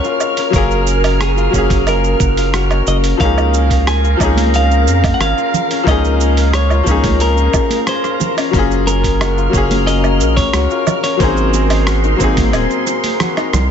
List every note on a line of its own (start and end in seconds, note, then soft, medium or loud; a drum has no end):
0.00 0.48 F#3 medium
0.00 0.49 A#3 medium
0.00 0.37 C#4 medium
0.00 0.50 C#4 medium
0.00 0.10 F#4 medium
0.00 0.51 G#4 loud
0.00 0.53 A#4 loud
0.00 8.49 A#4 medium
0.00 0.57 C#5 medium
0.00 0.51 F5 medium
0.00 3.16 F6 medium
0.04 1.26 F4 loud
0.04 cabasa soft
0.20 cabasa medium
0.20 low woodblock medium
0.37 1.71 C#4 medium
0.37 open hi-hat medium
0.37 cabasa soft
0.50 1.48 F#1 loud
0.50 1.48 F#3 medium
0.50 1.49 A#3 medium
0.50 1.50 C#4 medium
0.50 1.87 A#4 loud
0.50 kick loud
0.50 open hi-hat soft
0.50 cabasa soft
0.56 1.52 G#4 loud
0.56 1.22 A#4 medium
0.56 1.51 F5 medium
0.71 cabasa soft
0.87 cabasa medium
1.04 open hi-hat medium
1.04 cabasa soft
1.04 low woodblock medium
1.20 1.43 F#4 medium
1.20 1.88 G#4 medium
1.20 cross-stick loud
1.20 open hi-hat soft
1.20 cabasa soft
1.37 2.27 F4 loud
1.37 cabasa soft
1.50 2.15 F#1 loud
1.50 3.15 F#3 medium
1.50 3.16 A#3 medium
1.50 3.16 C#4 medium
1.50 kick medium
1.50 cabasa medium
1.56 3.19 G#4 medium
1.56 3.17 F5 medium
1.70 2.71 C#4 medium
1.70 kick loud
1.70 open hi-hat medium
1.70 cabasa soft
1.87 3.20 A#4 loud
1.87 2.84 A#4 medium
1.87 open hi-hat soft
1.87 cabasa soft
1.87 low woodblock medium
2.04 cabasa soft
2.20 2.82 F#1 loud
2.20 2.43 F#4 medium
2.20 kick loud
2.20 cabasa medium
2.37 2.60 F4 medium
2.37 open hi-hat medium
2.37 cabasa soft
2.54 2.93 F#4 medium
2.54 cross-stick loud
2.54 open hi-hat soft
2.54 cabasa soft
2.71 4.37 C#4 medium
2.71 cross-stick soft
2.71 cabasa soft
2.71 low woodblock medium
2.87 3.14 F#1 loud
2.87 4.03 F4 medium
2.87 2.97 D#5 medium
2.87 cabasa medium
3.04 open hi-hat medium
3.04 cabasa soft
3.17 4.15 C#2 loud
3.17 4.15 F3 medium
3.17 4.16 A#3 medium
3.17 4.54 A#4 loud
3.17 8.50 F5 medium
3.17 3.87 F5 loud
3.17 8.50 A#5 medium
3.17 kick loud
3.17 open hi-hat soft
3.17 cabasa soft
3.21 4.17 C#4 medium
3.21 4.18 D#4 medium
3.21 4.19 G#4 medium
3.38 cabasa soft
3.38 low woodblock medium
3.54 cabasa medium
3.70 kick medium
3.70 open hi-hat medium
3.70 cabasa soft
3.87 5.20 G#4 medium
3.87 4.55 G#5 loud
3.87 cross-stick loud
3.87 open hi-hat soft
3.87 cabasa soft
4.03 5.37 F4 loud
4.03 cabasa soft
4.17 4.88 C#2 loud
4.17 5.81 F3 medium
4.17 5.82 A#3 medium
4.17 5.83 C#4 medium
4.17 kick medium
4.17 cabasa medium
4.17 low woodblock medium
4.23 5.84 D#4 medium
4.23 5.85 G#4 loud
4.37 5.71 C#4 medium
4.37 open hi-hat medium
4.37 high conga loud
4.37 cabasa soft
4.54 5.88 A#4 loud
4.54 5.14 F5 medium
4.54 open hi-hat soft
4.54 cabasa soft
4.71 cabasa soft
4.87 5.14 F2 medium
4.87 cabasa medium
5.04 kick loud
5.04 open hi-hat soft
5.04 high conga medium
5.04 cabasa soft
5.04 low woodblock medium
5.14 5.21 F#5 medium
5.20 5.34 G#1 medium
5.20 6.54 G#4 medium
5.20 5.88 F5 loud
5.20 cross-stick medium
5.20 open hi-hat soft
5.20 cabasa soft
5.37 6.71 F4 loud
5.37 cabasa soft
5.54 low conga medium
5.54 cabasa medium
5.71 7.04 C#4 medium
5.71 open hi-hat medium
5.71 cabasa soft
5.83 6.82 C#2 loud
5.83 6.81 F3 medium
5.83 6.82 A#3 medium
5.83 6.83 C#4 medium
5.83 kick loud
5.87 6.84 D#4 medium
5.87 6.85 G#4 loud
5.87 7.20 A#4 medium
5.87 6.55 D#5 loud
5.87 open hi-hat soft
5.87 cabasa soft
5.87 low woodblock medium
6.05 cabasa soft
6.21 cabasa medium
6.37 open hi-hat medium
6.37 cabasa soft
6.53 7.87 G#4 medium
6.53 7.21 C#5 loud
6.53 cross-stick loud
6.53 open hi-hat soft
6.53 cabasa soft
6.70 8.04 F4 loud
6.70 cabasa soft
6.70 low woodblock medium
6.83 7.48 C#2 loud
6.83 8.48 F3 medium
6.83 8.49 A#3 medium
6.83 8.50 C#4 medium
6.83 kick medium
6.83 cabasa medium
6.89 8.51 D#4 medium
6.89 8.52 G#4 loud
7.04 8.37 C#4 medium
7.04 kick loud
7.04 open hi-hat medium
7.04 high conga medium
7.04 cabasa soft
7.20 8.53 A#4 loud
7.20 7.88 A#4 medium
7.20 open hi-hat soft
7.20 cabasa soft
7.37 cabasa soft
7.53 kick loud
7.53 high bongo medium
7.53 cabasa medium
7.53 low woodblock medium
7.70 open hi-hat medium
7.70 high conga medium
7.70 cabasa soft
7.87 10.15 G#4 medium
7.87 8.35 C5 medium
7.87 cross-stick medium
7.87 open hi-hat soft
7.87 cabasa soft
8.04 9.27 F4 loud
8.04 cross-stick soft
8.04 cabasa soft
8.20 high bongo medium
8.20 low conga medium
8.20 cabasa medium
8.37 9.71 C#4 medium
8.37 open hi-hat medium
8.37 high bongo soft
8.37 cabasa soft
8.37 low woodblock medium
8.51 9.48 F#1 loud
8.51 9.48 F#3 medium
8.51 9.49 A#3 medium
8.51 9.50 C#4 medium
8.51 13.71 A#4 medium
8.51 9.87 A#4 loud
8.51 11.18 F6 medium
8.51 kick loud
8.51 open hi-hat soft
8.51 cabasa soft
8.56 9.51 F4 medium
8.56 9.52 G#4 loud
8.71 cabasa soft
8.87 9.87 A#4 loud
8.87 cabasa medium
9.04 kick medium
9.04 open hi-hat medium
9.04 cabasa soft
9.21 9.43 F#4 medium
9.21 cross-stick loud
9.21 open hi-hat soft
9.21 cabasa soft
9.21 low woodblock medium
9.37 10.60 F4 medium
9.37 cabasa soft
9.50 10.21 F#1 loud
9.50 11.14 F#3 medium
9.50 11.15 A#3 medium
9.50 11.16 C#4 medium
9.50 kick medium
9.54 11.18 G#4 loud
9.54 11.17 F5 medium
9.54 cabasa medium
9.71 11.04 C#4 medium
9.71 open hi-hat medium
9.71 high conga medium
9.71 cabasa soft
9.87 11.99 A#4 loud
9.87 10.34 D#5 loud
9.87 open hi-hat soft
9.87 cabasa soft
10.04 cabasa soft
10.04 low woodblock medium
10.20 10.47 A#1 medium
10.20 cabasa medium
10.36 10.99 C#5 loud
10.36 kick loud
10.36 open hi-hat medium
10.36 high conga medium
10.36 cabasa soft
10.54 10.67 C#2 medium
10.54 10.77 F#4 medium
10.54 cross-stick medium
10.54 open hi-hat soft
10.54 cabasa soft
10.70 11.93 F4 loud
10.70 cabasa soft
10.87 low conga medium
10.87 cabasa medium
10.87 low woodblock medium
11.04 12.43 C#4 medium
11.04 11.20 C#5 loud
11.04 open hi-hat medium
11.04 cabasa soft
11.17 12.15 G#1 loud
11.17 12.15 F#3 medium
11.17 12.16 A#3 medium
11.17 12.16 C4 medium
11.17 12.54 G#4 loud
11.17 13.53 C5 medium
11.17 13.71 C6 medium
11.17 kick loud
11.17 open hi-hat soft
11.17 cabasa soft
11.22 12.17 D#4 medium
11.22 12.18 G#4 loud
11.37 cabasa soft
11.54 high bongo medium
11.54 cabasa medium
11.70 open hi-hat medium
11.70 cabasa soft
11.70 low woodblock medium
11.87 13.20 F#4 medium
11.87 cross-stick loud
11.87 open hi-hat soft
11.87 cabasa soft
12.04 13.37 D#4 loud
12.04 cabasa soft
12.16 12.52 G#1 loud
12.16 13.71 F#3 medium
12.16 13.71 A#3 medium
12.16 13.71 C4 medium
12.16 kick medium
12.16 cabasa medium
12.22 13.71 D#4 medium
12.22 13.71 G#4 loud
12.37 13.70 C4 medium
12.37 kick loud
12.37 open hi-hat medium
12.37 high conga medium
12.37 cabasa soft
12.53 12.67 D#1 medium
12.53 13.71 G#4 loud
12.53 open hi-hat soft
12.53 cabasa soft
12.53 low woodblock medium
12.70 cabasa soft
12.87 high bongo medium
12.87 cabasa medium
13.04 open hi-hat medium
13.04 high conga medium
13.04 cabasa soft
13.20 13.71 F#4 medium
13.20 cross-stick loud
13.20 open hi-hat soft
13.20 low conga medium
13.20 cabasa soft
13.37 13.71 D#4 loud
13.37 cross-stick soft
13.37 cabasa soft
13.37 low woodblock medium
13.53 13.71 C2 loud
13.53 cross-stick medium
13.53 high bongo medium
13.53 low conga medium
13.53 cabasa medium